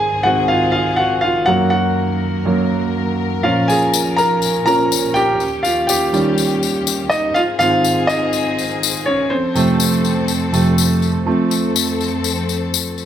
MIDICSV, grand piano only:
0, 0, Header, 1, 2, 480
1, 0, Start_track
1, 0, Tempo, 488998
1, 1458, Time_signature, 4, 2, 24, 8
1, 12813, End_track
2, 0, Start_track
2, 0, Title_t, "Grand piano"
2, 0, Program_c, 0, 0
2, 0, Control_c, 0, 64, 127
2, 0, Note_on_c, 0, 68, 73
2, 0, Note_on_c, 0, 80, 116
2, 225, Note_off_c, 0, 68, 0
2, 229, Note_on_c, 0, 78, 87
2, 245, Note_on_c, 0, 44, 47
2, 251, Note_on_c, 0, 51, 45
2, 258, Note_off_c, 0, 80, 0
2, 258, Note_on_c, 0, 60, 52
2, 260, Note_on_c, 0, 66, 66
2, 472, Note_on_c, 0, 77, 83
2, 482, Note_off_c, 0, 66, 0
2, 490, Note_off_c, 0, 78, 0
2, 501, Note_on_c, 0, 65, 68
2, 570, Note_off_c, 0, 44, 0
2, 573, Note_off_c, 0, 51, 0
2, 577, Note_off_c, 0, 60, 0
2, 691, Note_off_c, 0, 77, 0
2, 706, Note_on_c, 0, 77, 86
2, 721, Note_off_c, 0, 65, 0
2, 736, Note_on_c, 0, 65, 62
2, 944, Note_off_c, 0, 77, 0
2, 947, Note_on_c, 0, 78, 85
2, 960, Note_off_c, 0, 65, 0
2, 976, Note_on_c, 0, 66, 65
2, 1188, Note_on_c, 0, 77, 85
2, 1200, Note_off_c, 0, 66, 0
2, 1210, Note_off_c, 0, 78, 0
2, 1216, Note_on_c, 0, 65, 65
2, 1425, Note_off_c, 0, 77, 0
2, 1430, Note_on_c, 0, 78, 92
2, 1440, Note_off_c, 0, 65, 0
2, 1444, Note_on_c, 0, 42, 50
2, 1451, Note_on_c, 0, 54, 49
2, 1457, Note_on_c, 0, 58, 56
2, 1458, Note_on_c, 0, 66, 67
2, 1472, Control_c, 0, 64, 0
2, 1630, Control_c, 0, 64, 127
2, 1656, Note_off_c, 0, 78, 0
2, 1670, Note_on_c, 0, 78, 81
2, 1682, Note_off_c, 0, 66, 0
2, 1699, Note_on_c, 0, 66, 59
2, 2395, Note_off_c, 0, 42, 0
2, 2399, Note_off_c, 0, 54, 0
2, 2405, Note_off_c, 0, 58, 0
2, 2410, Note_on_c, 0, 42, 44
2, 2414, Note_on_c, 0, 54, 37
2, 2419, Note_on_c, 0, 58, 48
2, 2631, Note_off_c, 0, 42, 0
2, 2633, Note_off_c, 0, 54, 0
2, 2636, Note_off_c, 0, 58, 0
2, 3088, Note_off_c, 0, 78, 0
2, 3102, Note_off_c, 0, 66, 0
2, 3370, Note_on_c, 0, 77, 82
2, 3373, Note_on_c, 0, 46, 52
2, 3379, Note_on_c, 0, 53, 47
2, 3383, Note_on_c, 0, 61, 58
2, 3386, Note_on_c, 0, 65, 66
2, 3392, Control_c, 0, 64, 0
2, 3559, Control_c, 0, 64, 127
2, 3607, Note_off_c, 0, 65, 0
2, 3611, Note_on_c, 0, 80, 82
2, 3623, Note_off_c, 0, 77, 0
2, 3630, Note_on_c, 0, 68, 65
2, 4073, Note_off_c, 0, 68, 0
2, 4088, Note_on_c, 0, 82, 90
2, 4108, Note_on_c, 0, 70, 65
2, 4111, Note_off_c, 0, 80, 0
2, 4552, Note_off_c, 0, 70, 0
2, 4556, Note_off_c, 0, 82, 0
2, 4564, Note_off_c, 0, 46, 0
2, 4568, Note_off_c, 0, 53, 0
2, 4571, Note_on_c, 0, 82, 97
2, 4573, Note_off_c, 0, 61, 0
2, 4579, Note_on_c, 0, 46, 47
2, 4583, Note_on_c, 0, 53, 39
2, 4587, Note_on_c, 0, 61, 48
2, 4591, Note_on_c, 0, 70, 79
2, 4797, Note_off_c, 0, 46, 0
2, 4799, Note_off_c, 0, 53, 0
2, 4801, Note_off_c, 0, 61, 0
2, 5034, Note_off_c, 0, 70, 0
2, 5045, Note_on_c, 0, 79, 100
2, 5068, Note_on_c, 0, 67, 62
2, 5072, Note_off_c, 0, 82, 0
2, 5314, Control_c, 0, 64, 0
2, 5511, Control_c, 0, 64, 127
2, 5512, Note_off_c, 0, 67, 0
2, 5524, Note_on_c, 0, 77, 76
2, 5546, Note_on_c, 0, 65, 58
2, 5549, Note_off_c, 0, 79, 0
2, 5762, Note_on_c, 0, 79, 75
2, 5768, Note_off_c, 0, 65, 0
2, 5781, Note_off_c, 0, 77, 0
2, 5787, Note_on_c, 0, 67, 62
2, 6014, Note_on_c, 0, 51, 49
2, 6020, Note_on_c, 0, 55, 50
2, 6026, Note_on_c, 0, 61, 54
2, 6338, Note_off_c, 0, 51, 0
2, 6341, Note_off_c, 0, 55, 0
2, 6344, Note_off_c, 0, 61, 0
2, 6454, Note_off_c, 0, 79, 0
2, 6466, Note_off_c, 0, 67, 0
2, 6965, Note_on_c, 0, 75, 85
2, 6987, Note_on_c, 0, 63, 71
2, 7209, Note_off_c, 0, 63, 0
2, 7209, Note_on_c, 0, 77, 96
2, 7222, Note_off_c, 0, 75, 0
2, 7229, Note_on_c, 0, 65, 86
2, 7237, Control_c, 0, 64, 0
2, 7265, Note_off_c, 0, 77, 0
2, 7282, Note_off_c, 0, 65, 0
2, 7422, Control_c, 0, 64, 127
2, 7449, Note_on_c, 0, 77, 114
2, 7455, Note_on_c, 0, 44, 54
2, 7459, Note_on_c, 0, 51, 48
2, 7467, Note_on_c, 0, 60, 60
2, 7469, Note_on_c, 0, 65, 83
2, 7778, Note_off_c, 0, 44, 0
2, 7780, Note_off_c, 0, 51, 0
2, 7785, Note_off_c, 0, 60, 0
2, 7902, Note_off_c, 0, 77, 0
2, 7913, Note_off_c, 0, 65, 0
2, 7925, Note_on_c, 0, 75, 91
2, 7944, Note_on_c, 0, 63, 70
2, 8864, Note_off_c, 0, 63, 0
2, 8890, Note_on_c, 0, 73, 86
2, 8907, Note_on_c, 0, 61, 63
2, 8923, Note_off_c, 0, 75, 0
2, 9119, Note_off_c, 0, 73, 0
2, 9128, Note_off_c, 0, 61, 0
2, 9129, Note_on_c, 0, 72, 78
2, 9144, Note_on_c, 0, 60, 61
2, 9153, Control_c, 0, 64, 0
2, 9315, Control_c, 0, 64, 127
2, 9373, Note_on_c, 0, 41, 52
2, 9377, Note_on_c, 0, 48, 52
2, 9385, Note_on_c, 0, 57, 63
2, 9697, Note_off_c, 0, 41, 0
2, 9699, Note_off_c, 0, 48, 0
2, 9703, Note_off_c, 0, 57, 0
2, 10330, Note_on_c, 0, 41, 50
2, 10333, Note_on_c, 0, 48, 45
2, 10339, Note_on_c, 0, 57, 57
2, 10551, Note_off_c, 0, 41, 0
2, 10553, Note_off_c, 0, 48, 0
2, 10556, Note_off_c, 0, 57, 0
2, 10775, Note_off_c, 0, 72, 0
2, 10782, Note_off_c, 0, 60, 0
2, 11054, Note_on_c, 0, 53, 51
2, 11059, Note_on_c, 0, 57, 51
2, 11067, Note_on_c, 0, 60, 58
2, 11072, Control_c, 0, 64, 0
2, 11261, Control_c, 0, 64, 127
2, 11376, Note_off_c, 0, 53, 0
2, 11378, Note_off_c, 0, 57, 0
2, 11383, Note_off_c, 0, 60, 0
2, 12813, End_track
0, 0, End_of_file